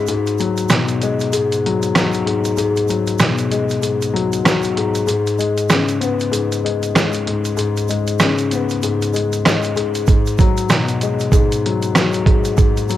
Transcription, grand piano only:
Already playing: C#3
0.08 G#2
0.40 F#3
0.69 B2
1.03 G#3
1.33 G#2
1.66 F#3
1.96 F#3
2.26 G#2
2.57 G#2
2.89 F#3
3.19 B2
3.51 G#3
3.82 G#2
4.14 F#3
4.45 F#3
4.77 G#2
5.07 G#2
5.39 G#3
5.71 C#3
6.01 B3
6.32 G#2
6.65 G#3
6.96 G#3
7.27 G#2
7.57 G#2
7.89 G#3
8.22 C#3
8.53 B3
8.83 G#2
9.13 G#3
9.45 G#3
9.76 G#2
10.08 G#2
10.40 F#3
10.69 B2
11.03 G#3
11.33 G#2
11.66 F#3
11.96 F#3
12.26 G#2
12.57 G#2
12.90 F#3

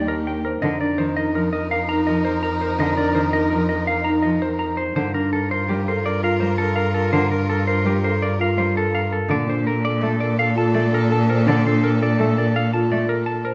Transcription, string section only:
Already playing: D4 G4
0.62 D#4 A#4
4.96 F4 A#4
9.30 D4 A4

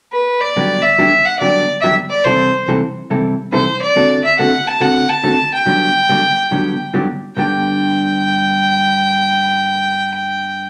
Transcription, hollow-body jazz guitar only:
0.56 G2 D3 F#3 B3 D4 G4
0.98 G2 D3 F#3 B3 D4 G4
1.41 G2 D3 F#3 B3 D4 G4
1.83 G2 D3 F#3 B3 D4 G4
2.25 C3 E3 G3 C4 E4 A4
2.68 C3 E3 G3 C4 E4 A4
3.10 C3 E3 G3 C4 E4 A4
3.52 C3 E3 G3 C4 E4 A4
3.96 D3 A3 C4 F#4 A4
4.39 D3 A3 C4 F#4 A4
4.80 D3 A3 C4 F#4 A4
5.23 D3 A3 C4 F#4 A4
5.66 G2 D3 F#3 B3 D4 G4
6.09 G2 D3 F#3 B3 D4 G4
6.51 G2 D3 F#3 B3 D4 G4
6.94 G2 D3 F#3 B3 D4 G4
7.37 G2 D3 B3 D4 G4

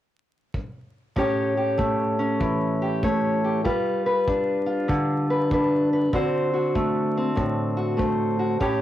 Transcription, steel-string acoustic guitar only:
1.16 A2 C#4 G4 C#5
1.57 G4
1.78 A3
2.19 C#4
2.40 E3
2.82 G4
3.04 A3 C#5
3.44 G4
3.64 G3 F4 B4
4.06 B4
4.28 D4
4.66 F4
4.88 D3
5.30 B4
5.52 D4 B4
5.93 B4
6.13 D3 C4 F#4 C5
6.54 F#4
6.75 A3
7.17 C4
7.36 A2
7.77 F#4
7.97 A3 C5
8.39 F#4
8.60 A2 C#4 G4 C#5

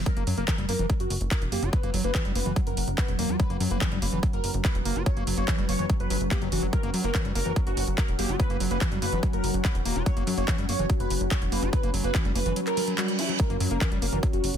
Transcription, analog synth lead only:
0.06 A#4
0.38 A#4
0.69 A#4
1.00 F#4
1.31 A#4
1.52 G4
1.73 B4
2.04 B4
2.35 B4
2.67 A#4
2.98 B4
3.19 A#4
3.40 B4
3.71 B4
4.02 B4
4.33 A#4
4.65 B4
4.85 A#4
5.06 C#5
5.38 C#5
5.69 C#5
6.00 B4
6.31 G4
6.52 F#4
6.73 A#4
7.04 A#4
7.35 A#4
7.67 F#4
7.98 A#4
8.19 G4
8.40 B4
8.71 B4
9.02 B4
9.33 A#4
9.65 B4
9.85 A#4
10.06 C#5
10.38 C#5
10.69 C#5
11.00 B4
11.31 C#5
11.52 B4
11.73 B4
12.04 B4
12.35 B4
12.67 A#4
12.98 F#4
13.19 E4
13.40 A#4
13.71 A#4
14.02 A#4
14.33 F#4

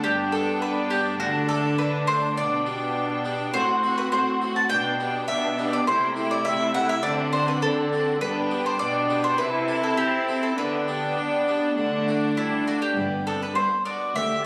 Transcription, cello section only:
0.04 G2
1.20 D3
2.37 B2
3.54 A2
4.12 A2
4.70 B2
5.29 B2
5.87 C3
6.45 C3
7.04 D3
7.62 D3
8.21 G2
8.80 B2
9.39 C3
9.98 C4
10.58 D3
11.18 D4
11.77 D3
12.37 D4
12.97 G2
14.15 D2

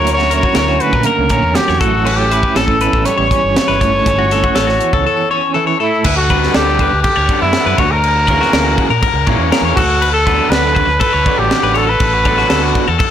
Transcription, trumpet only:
0.14 C#5
0.36 C#5
0.58 C#5
0.81 B4
1.05 A#4
1.55 G4
1.79 F#4
2.17 G4
2.56 A4
3.05 C#5
5.80 E4
6.17 F#4
6.55 G4
7.02 G4
7.41 E4
7.80 F#4
7.91 A#4
9.76 F#4
10.12 A4
10.50 B4
11.02 B4
11.39 G4
11.77 A4
11.89 B4

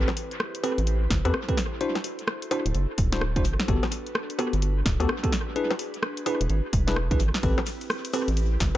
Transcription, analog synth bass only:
0.78 A1
1.10 G1
1.25 E2
2.66 D1
2.75 F#1
2.98 D1
3.45 G1
3.68 G1
4.53 G1
4.86 D1
5.00 D2
6.41 E1
6.50 G#1
6.73 E1
7.11 B1
7.20 G#1
7.43 A1
8.28 A1
8.61 G1

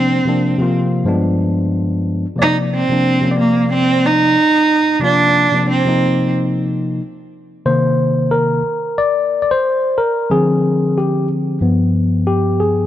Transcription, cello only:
Already playing: C4
2.42 D#4
2.75 C4
3.39 A#3
3.73 C4
4.06 D#4
5.04 D4
5.70 C4

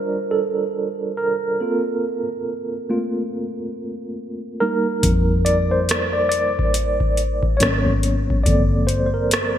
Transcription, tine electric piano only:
Already playing: G3 D4 F4 A#4 C5 D5 D#5
0.31 A4
1.17 A#4
1.60 A#3 C4 F4 A4
2.90 A3 A#3 C4 F4
4.60 G3 A#3 D#4 A#4
5.45 D5
5.71 C5
6.13 D5
6.29 D5
7.57 F#3 A#3 B3 C#4 C#5
8.43 F3 A#3 C4 A4 D5
8.87 C5
9.06 C5
9.14 A#4

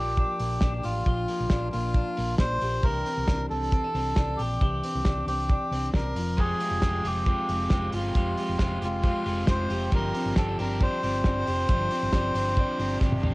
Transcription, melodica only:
Already playing: G4
0.78 G4
0.84 F4
1.73 F4
2.40 C5
2.84 A#4
3.50 A4
4.37 G4
5.27 G4
5.95 A#4
6.39 G#4
7.06 G4
7.95 F4
8.85 F4
9.50 C5
9.95 A#4
10.38 A4
10.61 A#4
10.82 C5

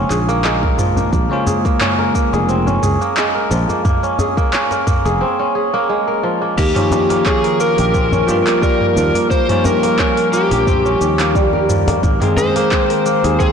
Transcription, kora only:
Already playing: F3 A#3 C#4 A#4
0.10 G#4
0.29 A#3
0.44 G#3
0.63 A#4
0.79 F3
0.97 A#3
1.13 A#3
1.31 C#4
1.47 G#4
1.65 A#3
1.81 C#4
1.99 A#4
2.15 A#3
2.33 G#4
2.49 C4
2.67 C#4
2.83 G#4
3.01 A#3
3.17 G#3
3.35 A#4
3.51 F3
3.69 A#3
3.85 A#3
4.03 C#4
4.19 G#4
4.37 A#3
4.53 C#4
4.71 A#4
4.87 A#3
5.05 G#4
5.21 C4
5.39 C#4
5.55 G#4
5.74 A#3
5.89 G#3
6.08 A#4
6.23 F3
6.42 A#3
6.57 A#3
6.76 C#4
6.91 G4
7.10 A#3
7.26 C#4
7.44 A#4
7.60 A#3
7.78 G4
7.94 C4
8.13 C#4
8.28 G4
8.47 A#3
8.62 G3
8.81 A#4
8.97 F3
9.15 A#3
9.31 A#3
9.49 C#4
9.65 G4
9.83 A#3
9.99 C#4
10.18 A#4
10.33 A#3
10.51 G4
10.67 C4
10.86 C#4
11.01 G4
11.20 A#3
11.35 G3
11.53 A#4
11.69 F3
11.88 A#3
12.03 A#3
12.22 C4
12.37 G#4
12.56 A#3
12.71 C4
12.90 A#4
13.06 A#3
13.24 G#4
13.40 C4

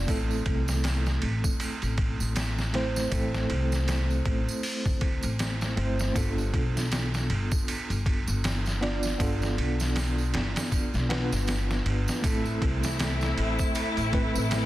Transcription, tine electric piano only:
0.06 A3 C4 E4
0.10 A4
2.73 A3 C4 E4 C5
3.10 A3 C4 E4
3.14 A4
5.76 A3 C4 E4 C5
6.14 B3 D4 F4 A4
8.81 B3 D4 F4 D5
9.18 B3 D4 F4 A4
11.09 B3 D4 F4 B4
12.22 A3 C4 E4
12.26 A4
14.12 A3 C4 E4 B4

